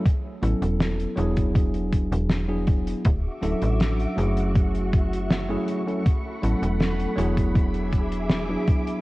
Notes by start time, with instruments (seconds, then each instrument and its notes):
0.05 kick, closed hi-hat
0.42 fm bass A1, tine electric piano F#3 B3 C#4 E4 A4, closed hi-hat
0.62 fm bass E1, closed hi-hat
0.80 snare, closed hi-hat
1.00 closed hi-hat
1.16 fm bass E1, tine electric piano F#3 B3 D4 E4 G#4, closed hi-hat
1.37 kick, closed hi-hat
1.55 kick, closed hi-hat
1.74 closed hi-hat
1.93 kick, closed hi-hat
2.12 fm bass E1, closed hi-hat
2.30 snare, closed hi-hat
2.48 tine electric piano F#3 B3 D4 E4 G#4
2.67 kick, closed hi-hat
2.87 closed hi-hat
3.05 fm bass D1, string machine F#4 E5 C#6 D6, kick, closed hi-hat
3.42 fm bass D1, tine electric piano F#3 C#4 D4 E4 A4, closed hi-hat
3.62 fm bass A1, closed hi-hat
3.80 snare, closed hi-hat
4.00 closed hi-hat
4.16 fm bass F#1, tine electric piano F#3 A3 C#4 E4 G#4, closed hi-hat
4.37 closed hi-hat
4.55 string machine E5, kick, closed hi-hat
4.75 closed hi-hat
4.93 kick, closed hi-hat
5.13 closed hi-hat
5.30 snare, closed hi-hat
5.48 tine electric piano F#3 A3 C#4 E4 G#4
5.67 closed hi-hat
5.86 tine electric piano F#3 A3 C#4 E4 A4, closed hi-hat
6.05 string machine A3 F#5 B5, kick, closed hi-hat
6.42 fm bass A1, tine electric piano F#3 B3 C#4 E4 A4, closed hi-hat
6.62 fm bass E1, closed hi-hat
6.80 snare, closed hi-hat
7.00 closed hi-hat
7.16 fm bass E1, tine electric piano F#3 B3 D4 E4 G#4, closed hi-hat
7.37 kick, closed hi-hat
7.55 string machine G#4 E5 D6, kick, closed hi-hat
7.74 closed hi-hat
7.93 kick, closed hi-hat
8.12 closed hi-hat
8.30 snare, closed hi-hat
8.49 tine electric piano F#3 B3 D4 E4 G#4
8.68 kick, closed hi-hat
8.87 closed hi-hat